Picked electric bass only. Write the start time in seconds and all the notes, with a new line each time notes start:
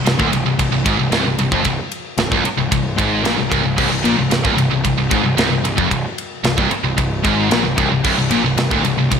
0.06 C1
0.19 D1
0.33 C1
0.46 C1
0.59 C1
0.73 C1
0.86 G#1
0.99 C1
1.12 C1
1.25 C1
1.38 C1
1.52 F1
1.65 C1
2.18 C1
2.32 C1
2.45 muted picked electric bass stroke
2.58 C1
2.72 C1
2.99 G#1
3.24 A#1
3.38 C1
3.52 C1
3.64 C1
3.78 C1
3.91 C1
4.04 A#1
4.17 C1
4.30 C1
4.45 D1
4.57 C1
4.71 C1
4.85 C1
4.97 C1
5.12 G#1
5.24 C1
5.37 C1
5.50 C1
5.63 C1
5.78 F1
5.91 C1
6.44 C1
6.58 C1
6.70 muted picked electric bass stroke
6.84 C1
6.98 C1
7.25 G#1
7.51 A#1
7.65 C1
7.78 C1
7.92 C1
8.05 C1
8.19 C1
8.30 A#1
8.44 C1
8.59 C1
8.72 D1
8.85 C1
8.98 C1
9.12 C1